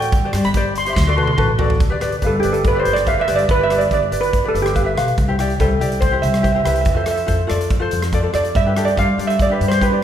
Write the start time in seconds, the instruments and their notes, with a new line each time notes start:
Already playing: upright bass A1, ukulele F#4 A4 D5, steel pan G5
0.02 closed hi-hat
0.12 upright bass G1, kick, closed hi-hat
0.25 ukulele G4 C5 D5
0.33 upright bass G2, ukulele G4 C5 D5, cross-stick, closed hi-hat
0.44 upright bass G1, steel pan B5, closed hi-hat
0.54 ukulele G4 C5 D5, kick, closed hi-hat
0.76 steel pan C6, closed hi-hat
0.85 ukulele G4 C5 E5, steel pan C6, closed hi-hat
0.93 upright bass D2, steel pan C6, kick, snare
1.02 steel pan C6
1.07 ukulele F#4 A4 D5, steel pan C6
1.16 ukulele F#4 A4 B4, steel pan C6, high tom
1.23 steel pan C6
1.27 high tom
1.33 ukulele F#4, steel pan C6
1.38 upright bass A1, ukulele A4 B4, kick, mid tom
1.58 ukulele F#4 A4 D5, floor tom
1.70 floor tom
1.80 upright bass G1, kick, closed hi-hat
1.90 ukulele G4 B4 D5
2.00 ukulele G4 B4 D5, cross-stick, closed hi-hat
2.12 closed hi-hat
2.22 upright bass G1, ukulele G4 B4 F5, kick, closed hi-hat
2.27 steel pan A4
2.40 steel pan G4, ukulele G4, closed hi-hat
2.44 upright bass G1, ukulele B4 D5
2.53 steel pan A4, closed hi-hat
2.65 steel pan B4, kick, closed hi-hat
2.75 ukulele G4 B4 D5
2.80 steel pan C5
2.85 upright bass G1, closed hi-hat
2.93 steel pan D5, cross-stick, closed hi-hat
3.06 ukulele G4 B4 E5, steel pan F5, kick, closed hi-hat
3.18 ukulele G4 B4 D5, steel pan E5
3.27 upright bass G1, ukulele G4 B4 D5, cross-stick, closed hi-hat
3.36 steel pan D5, closed hi-hat
3.49 upright bass G1, steel pan B4, kick, closed hi-hat
3.59 ukulele G4 B4 D5
3.64 steel pan E5
3.70 ukulele G4 B4 D5, cross-stick, closed hi-hat
3.78 steel pan D5, closed hi-hat
3.91 upright bass G1, ukulele G4 B4 D5, steel pan D5, kick, closed hi-hat
4.11 upright bass G1, ukulele G4 B4 D5, closed hi-hat
4.21 steel pan B4, closed hi-hat
4.33 kick, closed hi-hat
4.44 ukulele G4 B4 D5
4.48 steel pan A4
4.54 upright bass G1, closed hi-hat
4.62 steel pan G4, cross-stick, closed hi-hat
4.74 ukulele G4 B4 F5, kick, closed hi-hat
4.84 ukulele G4 B4 E5
4.95 upright bass B1, ukulele G4 B4 F5, cross-stick, closed hi-hat
5.08 closed hi-hat
5.18 upright bass C2, kick, closed hi-hat
5.28 ukulele E4 G4 C5
5.39 ukulele E4 G4 D5, cross-stick, closed hi-hat
5.50 closed hi-hat
5.59 upright bass C2, ukulele E4 G4 C5, steel pan A4, kick, closed hi-hat
5.80 upright bass C2, ukulele E4 G4 D5, closed hi-hat
5.92 closed hi-hat
6.01 steel pan C5, kick, closed hi-hat
6.12 ukulele E4 G4 C5
6.22 upright bass C2, steel pan E5, closed hi-hat
6.28 steel pan E5
6.34 steel pan E5, cross-stick, closed hi-hat
6.41 ukulele E4 G4 C5, steel pan E5, kick, closed hi-hat
6.52 ukulele E4 G4, steel pan E5
6.56 ukulele C5, steel pan E5
6.64 upright bass C2, ukulele E4 G4 B4, cross-stick, closed hi-hat
6.68 steel pan E5
6.74 steel pan E5, closed hi-hat
6.81 steel pan E5, closed hi-hat
6.86 upright bass F2, steel pan E5, kick
6.94 ukulele F4 A4 C5, steel pan E5
7.04 ukulele F4 A4 C5, steel pan E5, cross-stick, closed hi-hat
7.11 steel pan E5
7.17 closed hi-hat
7.26 upright bass F2, ukulele F4 A4 C5, kick, closed hi-hat
7.47 upright bass F2, ukulele F4 A4 D5, cross-stick, closed hi-hat
7.61 closed hi-hat
7.70 kick, closed hi-hat
7.80 ukulele F4 A4 C5
7.91 upright bass F2, closed hi-hat
8.02 cross-stick, closed hi-hat
8.13 ukulele F4 A4 D5, kick, closed hi-hat
8.22 ukulele F4 A4
8.33 upright bass F2, ukulele F4 A4 D5, steel pan D5, cross-stick, closed hi-hat
8.45 closed hi-hat
8.55 upright bass G2, steel pan E5, kick, closed hi-hat
8.66 ukulele D4 G4 B4
8.76 ukulele D4 G4 A4, cross-stick, closed hi-hat
8.85 steel pan D5, closed hi-hat
8.96 upright bass G2, ukulele D4 G4 D5, steel pan F5, kick, closed hi-hat
9.18 upright bass G2, ukulele D4 G4 D5, closed hi-hat
9.27 steel pan E5, closed hi-hat
9.39 steel pan D5, kick, closed hi-hat
9.50 ukulele D4 G4 B4
9.61 upright bass G2, closed hi-hat
9.68 steel pan C5, cross-stick, closed hi-hat
9.81 ukulele D4 G4 B4, steel pan B4, kick, closed hi-hat
9.91 ukulele D4 G4 D5